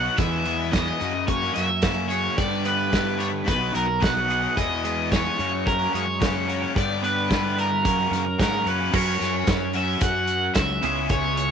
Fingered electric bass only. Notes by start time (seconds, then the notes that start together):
0.18 E2
1.01 F#2
1.56 F#2
2.38 G2
3.48 B1
3.75 B1
4.58 E2
5.39 F#2
5.94 F#2
6.76 G2
7.85 F#2
8.11 F#2
8.40 G#2
8.66 F#2
8.93 F#2
9.21 F#2
9.47 F#2
10.01 F#2
10.56 C#2
10.83 C#2